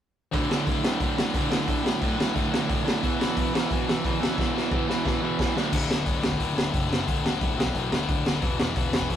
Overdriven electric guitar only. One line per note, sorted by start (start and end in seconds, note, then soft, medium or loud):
0.34 0.50 D2 medium
0.34 0.50 A2 medium
0.34 0.50 D3 medium
0.50 0.66 D2 medium
0.50 0.67 A2 medium
0.50 0.67 D3 medium
0.67 0.84 D2 medium
0.67 0.83 A2 medium
0.67 0.83 D3 medium
0.84 1.01 D2 medium
0.84 1.02 A2 medium
0.84 1.02 D3 medium
1.02 1.18 D2 medium
1.02 1.16 A2 loud
1.02 1.16 D3 loud
1.17 1.33 D2 medium
1.17 1.34 A2 medium
1.17 1.35 D3 medium
1.34 1.50 D2 medium
1.34 1.49 A2 medium
1.34 1.49 D3 medium
1.50 1.66 D2 medium
1.50 1.66 A2 medium
1.50 1.67 D3 medium
1.67 1.82 D2 medium
1.67 1.82 A2 medium
1.67 1.82 D3 loud
1.83 2.01 D2 medium
1.83 2.02 A2 medium
1.83 2.02 D3 medium
2.02 2.17 D2 medium
2.02 2.16 A2 medium
2.02 2.15 D3 medium
2.16 2.33 D2 medium
2.16 2.34 A2 medium
2.16 2.35 D3 medium
2.35 2.51 D2 medium
2.35 2.50 A2 loud
2.35 2.50 D3 loud
2.51 2.67 D2 medium
2.51 2.68 A2 medium
2.51 2.68 D3 medium
2.68 2.84 D2 medium
2.68 2.84 A2 medium
2.68 2.83 D3 medium
2.85 3.02 D2 medium
2.85 3.02 A2 medium
2.85 3.01 D3 medium
3.02 3.20 E2 medium
3.02 3.18 B2 medium
3.02 3.19 E3 loud
3.19 3.35 E2 medium
3.19 3.36 B2 medium
3.19 3.37 E3 loud
3.36 3.54 E2 medium
3.36 3.54 B2 medium
3.36 3.53 E3 medium
3.54 3.70 E2 medium
3.54 3.71 B2 medium
3.54 3.71 E3 medium
3.71 3.87 E2 medium
3.71 3.87 B2 medium
3.71 3.86 E3 loud
3.87 4.03 E2 medium
3.87 4.04 B2 medium
3.87 4.04 E3 medium
4.05 4.19 E2 medium
4.05 4.19 B2 medium
4.05 4.18 E3 medium
4.19 4.36 E2 medium
4.19 4.36 B2 medium
4.19 4.37 E3 medium
4.37 4.53 E2 medium
4.37 4.53 B2 loud
4.37 4.52 E3 medium
4.53 4.70 E2 medium
4.53 4.70 B2 medium
4.53 4.71 E3 medium
4.71 4.86 E2 medium
4.71 4.86 B2 medium
4.71 4.86 E3 medium
4.87 5.03 E2 medium
4.87 5.04 B2 medium
4.87 5.04 E3 medium
5.04 5.22 E2 medium
5.04 5.21 B2 medium
5.04 5.21 E3 loud
5.22 5.40 E2 medium
5.22 5.40 B2 medium
5.22 5.40 E3 medium
5.41 5.56 E2 medium
5.41 5.56 B2 medium
5.41 5.56 E3 medium
5.56 5.72 D2 medium
5.56 5.72 A2 medium
5.56 5.72 D3 medium